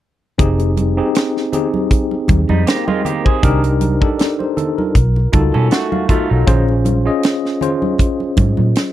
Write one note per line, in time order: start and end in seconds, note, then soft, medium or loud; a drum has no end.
0.38 0.99 F1 medium
0.38 0.73 C4 medium
0.38 0.74 D#4 medium
0.38 0.74 G4 medium
0.38 0.74 G#4 loud
0.38 kick loud
0.38 closed hi-hat medium
0.38 low conga medium
0.59 closed hi-hat soft
0.59 muted conga soft
0.77 closed hi-hat medium
0.77 high conga medium
0.97 1.32 C4 medium
0.97 1.32 D#4 medium
0.97 1.32 G4 medium
0.97 1.32 G#4 medium
1.15 snare medium
1.15 closed hi-hat medium
1.37 snare soft
1.52 2.46 C4 medium
1.52 2.46 D#4 medium
1.52 2.46 G4 medium
1.52 2.46 G#4 medium
1.52 closed hi-hat medium
1.52 low conga medium
1.74 high conga medium
1.91 kick medium
1.91 closed hi-hat medium
2.11 muted conga soft
2.28 2.46 D#2 medium
2.28 kick medium
2.28 closed hi-hat medium
2.28 high conga medium
2.49 2.63 F2 medium
2.49 2.67 G3 soft
2.49 2.66 D#4 medium
2.49 high conga medium
2.67 2.87 A#3 medium
2.67 2.87 G4 medium
2.67 2.87 C5 soft
2.67 2.87 G5 medium
2.67 snare loud
2.67 closed hi-hat medium
2.67 muted conga soft
2.87 3.05 G#3 medium
2.87 3.05 F4 medium
2.87 3.24 A#4 medium
2.87 3.24 D#5 medium
2.87 muted conga soft
2.87 high conga medium
3.05 3.25 A#3 medium
3.05 3.25 G4 medium
3.05 closed hi-hat medium
3.05 low conga medium
3.25 3.62 C4 soft
3.25 3.43 G4 soft
3.25 3.62 G#4 medium
3.25 3.62 C5 medium
3.25 kick medium
3.43 4.03 C2 medium
3.43 3.78 D4 loud
3.43 3.78 D#4 medium
3.43 3.78 G4 medium
3.43 3.78 A#4 loud
3.43 kick loud
3.43 closed hi-hat medium
3.43 low conga medium
3.64 closed hi-hat soft
3.64 muted conga soft
3.81 closed hi-hat medium
3.81 high conga medium
4.01 4.19 D4 medium
4.01 4.19 D#4 medium
4.01 4.19 G4 medium
4.01 4.18 A4 medium
4.01 kick medium
4.19 4.39 A4 soft
4.19 4.39 D5 medium
4.19 snare medium
4.19 closed hi-hat medium
4.19 muted conga soft
4.39 4.57 G4 soft
4.39 4.56 C5 medium
4.39 muted conga soft
4.57 4.77 D#4 medium
4.57 4.77 A4 medium
4.57 closed hi-hat medium
4.57 low conga medium
4.78 5.14 F4 soft
4.78 5.14 A#4 medium
4.78 high conga soft
4.95 5.25 B1 medium
4.95 kick medium
4.95 closed hi-hat medium
5.16 muted conga soft
5.33 5.50 C#2 medium
5.33 5.80 D#4 medium
5.33 5.80 F4 medium
5.33 5.80 F#4 medium
5.33 5.80 A4 medium
5.33 5.52 A5 medium
5.33 kick medium
5.33 closed hi-hat medium
5.33 high conga medium
5.54 5.68 B2 medium
5.54 5.71 C#4 medium
5.54 5.71 A4 medium
5.54 5.70 G#5 medium
5.54 high conga medium
5.71 6.08 A3 medium
5.71 6.08 F#4 medium
5.71 5.91 F#5 medium
5.71 snare medium
5.71 closed hi-hat medium
5.92 6.44 F5 medium
5.92 high conga medium
6.09 6.29 A3 medium
6.09 6.33 D#4 medium
6.09 6.33 F4 medium
6.09 6.29 F4 medium
6.09 6.34 F#4 medium
6.09 6.34 A4 medium
6.09 muted fingered electric bass stroke soft
6.09 kick medium
6.09 closed hi-hat medium
6.09 low conga medium
6.30 6.44 B1 medium
6.30 6.66 F#3 medium
6.30 6.66 D#4 medium
6.47 7.08 A#1 medium
6.47 6.82 C#4 loud
6.47 6.82 F4 medium
6.47 6.82 G#4 medium
6.47 6.82 C5 loud
6.47 kick loud
6.47 closed hi-hat medium
6.47 low conga medium
6.68 muted conga soft
6.85 closed hi-hat medium
6.85 high conga medium
7.05 7.40 C#4 medium
7.05 7.40 F4 medium
7.05 7.40 G#4 medium
7.05 7.41 D#5 medium
7.23 snare medium
7.23 closed hi-hat medium
7.45 snare soft
7.61 8.54 C#4 medium
7.61 8.55 F4 medium
7.61 8.55 G#4 medium
7.61 8.55 C5 medium
7.61 closed hi-hat medium
7.61 low conga medium
7.82 high conga medium
7.98 kick medium
7.98 closed hi-hat medium
7.98 muted conga soft
8.20 muted conga soft
8.37 8.54 G#2 medium
8.37 kick medium
8.37 closed hi-hat medium
8.37 high conga medium
8.57 8.72 A#2 medium
8.57 high conga medium
8.75 snare medium
8.75 closed hi-hat medium